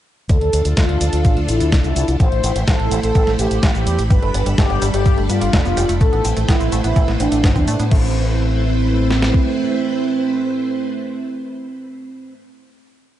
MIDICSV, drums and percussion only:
0, 0, Header, 1, 2, 480
1, 0, Start_track
1, 0, Key_signature, 0, "minor"
1, 0, Tempo, 476190
1, 297, Time_signature, 4, 2, 24, 8
1, 13305, End_track
2, 0, Start_track
2, 0, Title_t, "Drums"
2, 297, Note_on_c, 9, 42, 52
2, 297, Note_on_c, 9, 69, 37
2, 298, Note_on_c, 9, 36, 112
2, 398, Note_off_c, 9, 36, 0
2, 398, Note_off_c, 9, 42, 0
2, 398, Note_off_c, 9, 69, 0
2, 417, Note_on_c, 9, 42, 26
2, 518, Note_off_c, 9, 42, 0
2, 537, Note_on_c, 9, 42, 93
2, 537, Note_on_c, 9, 69, 66
2, 638, Note_off_c, 9, 42, 0
2, 638, Note_off_c, 9, 69, 0
2, 656, Note_on_c, 9, 42, 52
2, 656, Note_on_c, 9, 69, 28
2, 757, Note_off_c, 9, 42, 0
2, 757, Note_off_c, 9, 69, 0
2, 777, Note_on_c, 9, 38, 109
2, 777, Note_on_c, 9, 42, 53
2, 777, Note_on_c, 9, 69, 36
2, 778, Note_on_c, 9, 36, 112
2, 878, Note_off_c, 9, 36, 0
2, 878, Note_off_c, 9, 38, 0
2, 878, Note_off_c, 9, 42, 0
2, 878, Note_off_c, 9, 69, 0
2, 897, Note_on_c, 9, 42, 27
2, 998, Note_off_c, 9, 42, 0
2, 1017, Note_on_c, 9, 42, 90
2, 1017, Note_on_c, 9, 69, 64
2, 1118, Note_off_c, 9, 42, 0
2, 1118, Note_off_c, 9, 69, 0
2, 1137, Note_on_c, 9, 42, 52
2, 1137, Note_on_c, 9, 69, 27
2, 1238, Note_off_c, 9, 42, 0
2, 1238, Note_off_c, 9, 69, 0
2, 1257, Note_on_c, 9, 42, 51
2, 1257, Note_on_c, 9, 69, 36
2, 1258, Note_on_c, 9, 36, 111
2, 1358, Note_off_c, 9, 36, 0
2, 1358, Note_off_c, 9, 42, 0
2, 1358, Note_off_c, 9, 69, 0
2, 1378, Note_on_c, 9, 42, 25
2, 1479, Note_off_c, 9, 42, 0
2, 1498, Note_on_c, 9, 42, 89
2, 1498, Note_on_c, 9, 69, 63
2, 1599, Note_off_c, 9, 42, 0
2, 1599, Note_off_c, 9, 69, 0
2, 1618, Note_on_c, 9, 42, 53
2, 1618, Note_on_c, 9, 69, 28
2, 1719, Note_off_c, 9, 42, 0
2, 1719, Note_off_c, 9, 69, 0
2, 1738, Note_on_c, 9, 36, 109
2, 1738, Note_on_c, 9, 38, 119
2, 1738, Note_on_c, 9, 42, 53
2, 1738, Note_on_c, 9, 69, 39
2, 1838, Note_off_c, 9, 36, 0
2, 1839, Note_off_c, 9, 38, 0
2, 1839, Note_off_c, 9, 42, 0
2, 1839, Note_off_c, 9, 69, 0
2, 1858, Note_on_c, 9, 42, 26
2, 1858, Note_on_c, 9, 69, 25
2, 1958, Note_off_c, 9, 42, 0
2, 1958, Note_off_c, 9, 69, 0
2, 1978, Note_on_c, 9, 42, 87
2, 1978, Note_on_c, 9, 69, 63
2, 2079, Note_off_c, 9, 42, 0
2, 2079, Note_off_c, 9, 69, 0
2, 2098, Note_on_c, 9, 42, 52
2, 2098, Note_on_c, 9, 69, 28
2, 2199, Note_off_c, 9, 42, 0
2, 2199, Note_off_c, 9, 69, 0
2, 2218, Note_on_c, 9, 36, 118
2, 2218, Note_on_c, 9, 42, 54
2, 2218, Note_on_c, 9, 69, 35
2, 2319, Note_off_c, 9, 36, 0
2, 2319, Note_off_c, 9, 42, 0
2, 2319, Note_off_c, 9, 69, 0
2, 2338, Note_on_c, 9, 42, 26
2, 2439, Note_off_c, 9, 42, 0
2, 2457, Note_on_c, 9, 42, 94
2, 2457, Note_on_c, 9, 69, 65
2, 2558, Note_off_c, 9, 42, 0
2, 2558, Note_off_c, 9, 69, 0
2, 2578, Note_on_c, 9, 42, 52
2, 2578, Note_on_c, 9, 69, 26
2, 2679, Note_off_c, 9, 42, 0
2, 2679, Note_off_c, 9, 69, 0
2, 2697, Note_on_c, 9, 38, 117
2, 2697, Note_on_c, 9, 42, 51
2, 2697, Note_on_c, 9, 69, 36
2, 2698, Note_on_c, 9, 36, 116
2, 2798, Note_off_c, 9, 38, 0
2, 2798, Note_off_c, 9, 42, 0
2, 2798, Note_off_c, 9, 69, 0
2, 2799, Note_off_c, 9, 36, 0
2, 2818, Note_on_c, 9, 42, 25
2, 2919, Note_off_c, 9, 42, 0
2, 2938, Note_on_c, 9, 42, 89
2, 2938, Note_on_c, 9, 69, 61
2, 3039, Note_off_c, 9, 42, 0
2, 3039, Note_off_c, 9, 69, 0
2, 3059, Note_on_c, 9, 42, 53
2, 3059, Note_on_c, 9, 69, 27
2, 3159, Note_off_c, 9, 42, 0
2, 3159, Note_off_c, 9, 69, 0
2, 3177, Note_on_c, 9, 42, 51
2, 3177, Note_on_c, 9, 69, 35
2, 3178, Note_on_c, 9, 36, 118
2, 3278, Note_off_c, 9, 42, 0
2, 3278, Note_off_c, 9, 69, 0
2, 3279, Note_off_c, 9, 36, 0
2, 3297, Note_on_c, 9, 38, 37
2, 3297, Note_on_c, 9, 42, 27
2, 3398, Note_off_c, 9, 38, 0
2, 3398, Note_off_c, 9, 42, 0
2, 3417, Note_on_c, 9, 42, 92
2, 3417, Note_on_c, 9, 69, 61
2, 3518, Note_off_c, 9, 42, 0
2, 3518, Note_off_c, 9, 69, 0
2, 3538, Note_on_c, 9, 42, 52
2, 3538, Note_on_c, 9, 69, 28
2, 3639, Note_off_c, 9, 42, 0
2, 3639, Note_off_c, 9, 69, 0
2, 3658, Note_on_c, 9, 36, 118
2, 3658, Note_on_c, 9, 38, 120
2, 3658, Note_on_c, 9, 42, 53
2, 3658, Note_on_c, 9, 69, 37
2, 3759, Note_off_c, 9, 36, 0
2, 3759, Note_off_c, 9, 38, 0
2, 3759, Note_off_c, 9, 42, 0
2, 3759, Note_off_c, 9, 69, 0
2, 3778, Note_on_c, 9, 42, 26
2, 3778, Note_on_c, 9, 69, 25
2, 3879, Note_off_c, 9, 42, 0
2, 3879, Note_off_c, 9, 69, 0
2, 3898, Note_on_c, 9, 42, 92
2, 3898, Note_on_c, 9, 69, 62
2, 3999, Note_off_c, 9, 42, 0
2, 3999, Note_off_c, 9, 69, 0
2, 4019, Note_on_c, 9, 42, 54
2, 4019, Note_on_c, 9, 69, 28
2, 4120, Note_off_c, 9, 42, 0
2, 4120, Note_off_c, 9, 69, 0
2, 4138, Note_on_c, 9, 36, 124
2, 4139, Note_on_c, 9, 42, 51
2, 4139, Note_on_c, 9, 69, 36
2, 4239, Note_off_c, 9, 36, 0
2, 4240, Note_off_c, 9, 42, 0
2, 4240, Note_off_c, 9, 69, 0
2, 4259, Note_on_c, 9, 42, 26
2, 4359, Note_off_c, 9, 42, 0
2, 4379, Note_on_c, 9, 42, 92
2, 4379, Note_on_c, 9, 69, 64
2, 4480, Note_off_c, 9, 42, 0
2, 4480, Note_off_c, 9, 69, 0
2, 4499, Note_on_c, 9, 42, 52
2, 4499, Note_on_c, 9, 69, 27
2, 4600, Note_off_c, 9, 42, 0
2, 4600, Note_off_c, 9, 69, 0
2, 4618, Note_on_c, 9, 36, 115
2, 4618, Note_on_c, 9, 38, 115
2, 4618, Note_on_c, 9, 42, 49
2, 4618, Note_on_c, 9, 69, 35
2, 4718, Note_off_c, 9, 36, 0
2, 4719, Note_off_c, 9, 38, 0
2, 4719, Note_off_c, 9, 42, 0
2, 4719, Note_off_c, 9, 69, 0
2, 4738, Note_on_c, 9, 42, 26
2, 4839, Note_off_c, 9, 42, 0
2, 4858, Note_on_c, 9, 42, 89
2, 4858, Note_on_c, 9, 69, 64
2, 4959, Note_off_c, 9, 42, 0
2, 4959, Note_off_c, 9, 69, 0
2, 4978, Note_on_c, 9, 42, 50
2, 4978, Note_on_c, 9, 69, 28
2, 5079, Note_off_c, 9, 42, 0
2, 5079, Note_off_c, 9, 69, 0
2, 5098, Note_on_c, 9, 36, 124
2, 5098, Note_on_c, 9, 42, 49
2, 5098, Note_on_c, 9, 69, 36
2, 5198, Note_off_c, 9, 36, 0
2, 5198, Note_off_c, 9, 42, 0
2, 5198, Note_off_c, 9, 69, 0
2, 5218, Note_on_c, 9, 42, 26
2, 5319, Note_off_c, 9, 42, 0
2, 5338, Note_on_c, 9, 42, 89
2, 5338, Note_on_c, 9, 69, 62
2, 5439, Note_off_c, 9, 42, 0
2, 5439, Note_off_c, 9, 69, 0
2, 5458, Note_on_c, 9, 42, 52
2, 5458, Note_on_c, 9, 69, 27
2, 5559, Note_off_c, 9, 42, 0
2, 5559, Note_off_c, 9, 69, 0
2, 5578, Note_on_c, 9, 36, 119
2, 5578, Note_on_c, 9, 38, 125
2, 5578, Note_on_c, 9, 42, 54
2, 5578, Note_on_c, 9, 69, 38
2, 5678, Note_off_c, 9, 36, 0
2, 5679, Note_off_c, 9, 38, 0
2, 5679, Note_off_c, 9, 42, 0
2, 5679, Note_off_c, 9, 69, 0
2, 5698, Note_on_c, 9, 42, 26
2, 5698, Note_on_c, 9, 69, 25
2, 5799, Note_off_c, 9, 42, 0
2, 5799, Note_off_c, 9, 69, 0
2, 5818, Note_on_c, 9, 42, 89
2, 5818, Note_on_c, 9, 69, 63
2, 5919, Note_off_c, 9, 42, 0
2, 5919, Note_off_c, 9, 69, 0
2, 5939, Note_on_c, 9, 42, 53
2, 5939, Note_on_c, 9, 69, 28
2, 6039, Note_off_c, 9, 42, 0
2, 6039, Note_off_c, 9, 69, 0
2, 6057, Note_on_c, 9, 36, 118
2, 6058, Note_on_c, 9, 42, 51
2, 6058, Note_on_c, 9, 69, 36
2, 6158, Note_off_c, 9, 36, 0
2, 6158, Note_off_c, 9, 42, 0
2, 6158, Note_off_c, 9, 69, 0
2, 6177, Note_on_c, 9, 42, 26
2, 6278, Note_off_c, 9, 42, 0
2, 6298, Note_on_c, 9, 42, 88
2, 6298, Note_on_c, 9, 69, 64
2, 6398, Note_off_c, 9, 42, 0
2, 6398, Note_off_c, 9, 69, 0
2, 6418, Note_on_c, 9, 42, 52
2, 6418, Note_on_c, 9, 69, 27
2, 6518, Note_off_c, 9, 42, 0
2, 6518, Note_off_c, 9, 69, 0
2, 6537, Note_on_c, 9, 36, 118
2, 6537, Note_on_c, 9, 38, 114
2, 6537, Note_on_c, 9, 42, 50
2, 6537, Note_on_c, 9, 69, 35
2, 6638, Note_off_c, 9, 36, 0
2, 6638, Note_off_c, 9, 38, 0
2, 6638, Note_off_c, 9, 42, 0
2, 6638, Note_off_c, 9, 69, 0
2, 6657, Note_on_c, 9, 42, 25
2, 6657, Note_on_c, 9, 69, 25
2, 6758, Note_off_c, 9, 42, 0
2, 6758, Note_off_c, 9, 69, 0
2, 6777, Note_on_c, 9, 42, 86
2, 6777, Note_on_c, 9, 69, 64
2, 6878, Note_off_c, 9, 42, 0
2, 6878, Note_off_c, 9, 69, 0
2, 6897, Note_on_c, 9, 42, 49
2, 6897, Note_on_c, 9, 69, 28
2, 6998, Note_off_c, 9, 42, 0
2, 6998, Note_off_c, 9, 69, 0
2, 7017, Note_on_c, 9, 36, 119
2, 7018, Note_on_c, 9, 42, 49
2, 7018, Note_on_c, 9, 69, 36
2, 7118, Note_off_c, 9, 36, 0
2, 7119, Note_off_c, 9, 42, 0
2, 7119, Note_off_c, 9, 69, 0
2, 7137, Note_on_c, 9, 38, 38
2, 7137, Note_on_c, 9, 42, 25
2, 7238, Note_off_c, 9, 38, 0
2, 7238, Note_off_c, 9, 42, 0
2, 7258, Note_on_c, 9, 42, 86
2, 7258, Note_on_c, 9, 69, 63
2, 7359, Note_off_c, 9, 42, 0
2, 7359, Note_off_c, 9, 69, 0
2, 7377, Note_on_c, 9, 42, 51
2, 7377, Note_on_c, 9, 69, 27
2, 7478, Note_off_c, 9, 42, 0
2, 7478, Note_off_c, 9, 69, 0
2, 7498, Note_on_c, 9, 36, 116
2, 7498, Note_on_c, 9, 38, 118
2, 7498, Note_on_c, 9, 42, 52
2, 7498, Note_on_c, 9, 69, 37
2, 7599, Note_off_c, 9, 36, 0
2, 7599, Note_off_c, 9, 38, 0
2, 7599, Note_off_c, 9, 42, 0
2, 7599, Note_off_c, 9, 69, 0
2, 7618, Note_on_c, 9, 36, 62
2, 7618, Note_on_c, 9, 42, 25
2, 7618, Note_on_c, 9, 69, 26
2, 7719, Note_off_c, 9, 36, 0
2, 7719, Note_off_c, 9, 42, 0
2, 7719, Note_off_c, 9, 69, 0
2, 7738, Note_on_c, 9, 42, 88
2, 7738, Note_on_c, 9, 69, 63
2, 7839, Note_off_c, 9, 42, 0
2, 7839, Note_off_c, 9, 69, 0
2, 7858, Note_on_c, 9, 42, 49
2, 7858, Note_on_c, 9, 69, 28
2, 7959, Note_off_c, 9, 42, 0
2, 7959, Note_off_c, 9, 69, 0
2, 7978, Note_on_c, 9, 36, 108
2, 7978, Note_on_c, 9, 49, 81
2, 8079, Note_off_c, 9, 36, 0
2, 8079, Note_off_c, 9, 49, 0
2, 9179, Note_on_c, 9, 38, 59
2, 9279, Note_off_c, 9, 38, 0
2, 9298, Note_on_c, 9, 38, 74
2, 9399, Note_off_c, 9, 38, 0
2, 9418, Note_on_c, 9, 36, 87
2, 9519, Note_off_c, 9, 36, 0
2, 13305, End_track
0, 0, End_of_file